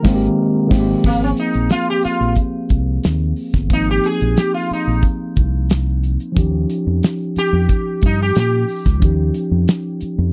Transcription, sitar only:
0, 0, Header, 1, 2, 480
1, 0, Start_track
1, 0, Tempo, 665188
1, 752, Time_signature, 4, 2, 24, 8
1, 7453, End_track
2, 0, Start_track
2, 0, Title_t, "Sitar"
2, 0, Program_c, 0, 104
2, 0, Note_on_c, 0, 70, 88
2, 487, Note_off_c, 0, 70, 0
2, 764, Note_on_c, 0, 58, 74
2, 881, Note_off_c, 0, 58, 0
2, 892, Note_on_c, 0, 61, 84
2, 928, Note_off_c, 0, 61, 0
2, 1006, Note_on_c, 0, 63, 83
2, 1222, Note_off_c, 0, 63, 0
2, 1240, Note_on_c, 0, 65, 97
2, 1359, Note_off_c, 0, 65, 0
2, 1371, Note_on_c, 0, 67, 99
2, 1472, Note_off_c, 0, 67, 0
2, 1475, Note_on_c, 0, 65, 84
2, 1697, Note_off_c, 0, 65, 0
2, 2693, Note_on_c, 0, 63, 90
2, 2795, Note_off_c, 0, 63, 0
2, 2818, Note_on_c, 0, 67, 94
2, 2928, Note_off_c, 0, 67, 0
2, 2928, Note_on_c, 0, 68, 99
2, 3158, Note_on_c, 0, 67, 86
2, 3167, Note_off_c, 0, 68, 0
2, 3267, Note_off_c, 0, 67, 0
2, 3277, Note_on_c, 0, 65, 77
2, 3387, Note_off_c, 0, 65, 0
2, 3415, Note_on_c, 0, 63, 66
2, 3628, Note_off_c, 0, 63, 0
2, 5328, Note_on_c, 0, 67, 104
2, 5811, Note_off_c, 0, 67, 0
2, 5814, Note_on_c, 0, 63, 78
2, 5915, Note_off_c, 0, 63, 0
2, 5934, Note_on_c, 0, 67, 82
2, 6046, Note_off_c, 0, 67, 0
2, 6057, Note_on_c, 0, 67, 82
2, 7214, Note_off_c, 0, 67, 0
2, 7453, End_track
0, 0, End_of_file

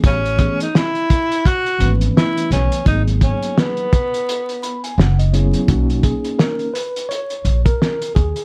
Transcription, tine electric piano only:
0, 0, Header, 1, 2, 480
1, 0, Start_track
1, 0, Key_signature, 5, "major"
1, 0, Tempo, 705882
1, 25, Time_signature, 4, 2, 24, 8
1, 5743, End_track
2, 0, Start_track
2, 0, Title_t, "Tine electric piano"
2, 0, Program_c, 0, 4
2, 0, Note_on_c, 0, 52, 64
2, 0, Note_on_c, 0, 57, 58
2, 0, Note_on_c, 0, 59, 58
2, 0, Note_on_c, 0, 61, 63
2, 0, Note_on_c, 0, 68, 73
2, 134, Note_off_c, 0, 52, 0
2, 136, Note_off_c, 0, 57, 0
2, 139, Note_off_c, 0, 59, 0
2, 141, Note_off_c, 0, 61, 0
2, 144, Note_off_c, 0, 68, 0
2, 251, Note_on_c, 0, 52, 67
2, 257, Note_on_c, 0, 57, 66
2, 262, Note_on_c, 0, 59, 67
2, 267, Note_on_c, 0, 61, 67
2, 272, Note_on_c, 0, 68, 86
2, 439, Note_off_c, 0, 52, 0
2, 443, Note_off_c, 0, 57, 0
2, 445, Note_off_c, 0, 59, 0
2, 447, Note_off_c, 0, 61, 0
2, 450, Note_off_c, 0, 68, 0
2, 1214, Note_on_c, 0, 52, 77
2, 1221, Note_on_c, 0, 57, 63
2, 1226, Note_on_c, 0, 59, 67
2, 1230, Note_on_c, 0, 61, 65
2, 1235, Note_on_c, 0, 71, 76
2, 1900, Note_off_c, 0, 52, 0
2, 1904, Note_off_c, 0, 57, 0
2, 1907, Note_off_c, 0, 59, 0
2, 1908, Note_off_c, 0, 61, 0
2, 1911, Note_off_c, 0, 71, 0
2, 1936, Note_on_c, 0, 54, 75
2, 1942, Note_on_c, 0, 58, 67
2, 1946, Note_on_c, 0, 59, 60
2, 1951, Note_on_c, 0, 63, 67
2, 1957, Note_on_c, 0, 68, 78
2, 2621, Note_off_c, 0, 54, 0
2, 2624, Note_off_c, 0, 58, 0
2, 2626, Note_off_c, 0, 59, 0
2, 2629, Note_off_c, 0, 63, 0
2, 2632, Note_off_c, 0, 68, 0
2, 3147, Note_on_c, 0, 83, 73
2, 3279, Note_off_c, 0, 83, 0
2, 3290, Note_on_c, 0, 80, 65
2, 3379, Note_off_c, 0, 80, 0
2, 3388, Note_on_c, 0, 78, 75
2, 3519, Note_off_c, 0, 78, 0
2, 3529, Note_on_c, 0, 75, 78
2, 3616, Note_on_c, 0, 54, 75
2, 3619, Note_off_c, 0, 75, 0
2, 3620, Note_on_c, 0, 59, 77
2, 3626, Note_on_c, 0, 61, 76
2, 3627, Note_on_c, 0, 73, 70
2, 3630, Note_on_c, 0, 64, 74
2, 3637, Note_on_c, 0, 68, 83
2, 3849, Note_off_c, 0, 73, 0
2, 3860, Note_off_c, 0, 54, 0
2, 3862, Note_off_c, 0, 59, 0
2, 3862, Note_off_c, 0, 61, 0
2, 3866, Note_on_c, 0, 58, 56
2, 3867, Note_off_c, 0, 64, 0
2, 3870, Note_on_c, 0, 61, 54
2, 3870, Note_on_c, 0, 66, 80
2, 3871, Note_off_c, 0, 68, 0
2, 3876, Note_on_c, 0, 63, 66
2, 4091, Note_off_c, 0, 66, 0
2, 4105, Note_on_c, 0, 68, 83
2, 4343, Note_on_c, 0, 70, 83
2, 4352, Note_off_c, 0, 68, 0
2, 4558, Note_off_c, 0, 58, 0
2, 4560, Note_off_c, 0, 61, 0
2, 4563, Note_off_c, 0, 63, 0
2, 4567, Note_off_c, 0, 70, 0
2, 4581, Note_on_c, 0, 71, 85
2, 4820, Note_on_c, 0, 73, 99
2, 4830, Note_off_c, 0, 71, 0
2, 5178, Note_off_c, 0, 73, 0
2, 5204, Note_on_c, 0, 70, 86
2, 5520, Note_off_c, 0, 70, 0
2, 5543, Note_on_c, 0, 68, 82
2, 5743, Note_off_c, 0, 68, 0
2, 5743, End_track
0, 0, End_of_file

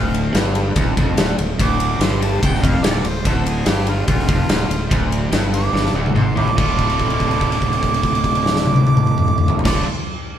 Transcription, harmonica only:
0, 0, Header, 1, 2, 480
1, 0, Start_track
1, 0, Key_signature, -1, "minor"
1, 0, Tempo, 415800
1, 1824, Time_signature, 4, 2, 24, 8
1, 11990, End_track
2, 0, Start_track
2, 0, Title_t, "Harmonica"
2, 0, Program_c, 0, 22
2, 0, Note_on_c, 0, 77, 118
2, 372, Note_off_c, 0, 77, 0
2, 1872, Note_on_c, 0, 86, 98
2, 2333, Note_on_c, 0, 84, 95
2, 2350, Note_off_c, 0, 86, 0
2, 2550, Note_off_c, 0, 84, 0
2, 2583, Note_on_c, 0, 81, 79
2, 2795, Note_off_c, 0, 81, 0
2, 2817, Note_on_c, 0, 79, 95
2, 3037, Note_on_c, 0, 77, 89
2, 3055, Note_off_c, 0, 79, 0
2, 3273, Note_on_c, 0, 74, 79
2, 3291, Note_off_c, 0, 77, 0
2, 3539, Note_on_c, 0, 72, 85
2, 3556, Note_off_c, 0, 74, 0
2, 3767, Note_on_c, 0, 69, 82
2, 3785, Note_off_c, 0, 72, 0
2, 4023, Note_on_c, 0, 68, 85
2, 4041, Note_off_c, 0, 69, 0
2, 4264, Note_on_c, 0, 67, 93
2, 4282, Note_off_c, 0, 68, 0
2, 4489, Note_on_c, 0, 65, 76
2, 4506, Note_off_c, 0, 67, 0
2, 4703, Note_off_c, 0, 65, 0
2, 4710, Note_on_c, 0, 65, 104
2, 5634, Note_off_c, 0, 65, 0
2, 6399, Note_on_c, 0, 86, 96
2, 6854, Note_off_c, 0, 86, 0
2, 7124, Note_on_c, 0, 84, 81
2, 7362, Note_on_c, 0, 86, 97
2, 7380, Note_off_c, 0, 84, 0
2, 7583, Note_off_c, 0, 86, 0
2, 7596, Note_on_c, 0, 86, 95
2, 11042, Note_off_c, 0, 86, 0
2, 11157, Note_on_c, 0, 86, 93
2, 11357, Note_off_c, 0, 86, 0
2, 11990, End_track
0, 0, End_of_file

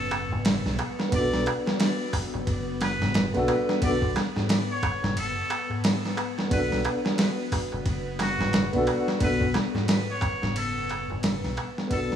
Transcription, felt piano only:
0, 0, Header, 1, 2, 480
1, 0, Start_track
1, 0, Key_signature, 2, "minor"
1, 0, Tempo, 674157
1, 800, Time_signature, 4, 2, 24, 8
1, 8656, End_track
2, 0, Start_track
2, 0, Title_t, "Felt piano"
2, 0, Program_c, 0, 0
2, 774, Note_on_c, 0, 59, 85
2, 796, Note_on_c, 0, 62, 72
2, 822, Note_on_c, 0, 66, 73
2, 844, Note_on_c, 0, 69, 90
2, 2336, Note_off_c, 0, 59, 0
2, 2347, Note_off_c, 0, 62, 0
2, 2360, Note_off_c, 0, 66, 0
2, 2371, Note_off_c, 0, 69, 0
2, 2377, Note_on_c, 0, 59, 99
2, 2389, Note_on_c, 0, 62, 92
2, 2399, Note_on_c, 0, 66, 91
2, 2413, Note_on_c, 0, 69, 112
2, 2694, Note_off_c, 0, 59, 0
2, 2699, Note_off_c, 0, 62, 0
2, 2705, Note_off_c, 0, 66, 0
2, 2710, Note_on_c, 0, 59, 89
2, 2712, Note_off_c, 0, 69, 0
2, 2724, Note_on_c, 0, 62, 76
2, 2735, Note_on_c, 0, 66, 80
2, 2746, Note_on_c, 0, 69, 98
2, 2846, Note_off_c, 0, 59, 0
2, 2852, Note_off_c, 0, 62, 0
2, 2858, Note_off_c, 0, 66, 0
2, 2863, Note_off_c, 0, 69, 0
2, 4611, Note_on_c, 0, 59, 77
2, 4636, Note_on_c, 0, 62, 79
2, 4659, Note_on_c, 0, 66, 72
2, 4682, Note_on_c, 0, 69, 88
2, 6175, Note_off_c, 0, 59, 0
2, 6187, Note_off_c, 0, 62, 0
2, 6199, Note_off_c, 0, 66, 0
2, 6210, Note_off_c, 0, 69, 0
2, 6213, Note_on_c, 0, 59, 97
2, 6225, Note_on_c, 0, 62, 91
2, 6237, Note_on_c, 0, 66, 86
2, 6249, Note_on_c, 0, 69, 111
2, 6532, Note_off_c, 0, 59, 0
2, 6538, Note_off_c, 0, 62, 0
2, 6544, Note_off_c, 0, 66, 0
2, 6544, Note_on_c, 0, 59, 84
2, 6550, Note_off_c, 0, 69, 0
2, 6558, Note_on_c, 0, 62, 76
2, 6568, Note_on_c, 0, 66, 80
2, 6581, Note_on_c, 0, 69, 99
2, 6682, Note_off_c, 0, 59, 0
2, 6689, Note_off_c, 0, 62, 0
2, 6694, Note_off_c, 0, 66, 0
2, 6701, Note_off_c, 0, 69, 0
2, 8453, Note_on_c, 0, 59, 83
2, 8476, Note_on_c, 0, 62, 73
2, 8500, Note_on_c, 0, 66, 75
2, 8522, Note_on_c, 0, 69, 91
2, 8656, Note_off_c, 0, 59, 0
2, 8656, Note_off_c, 0, 62, 0
2, 8656, Note_off_c, 0, 66, 0
2, 8656, Note_off_c, 0, 69, 0
2, 8656, End_track
0, 0, End_of_file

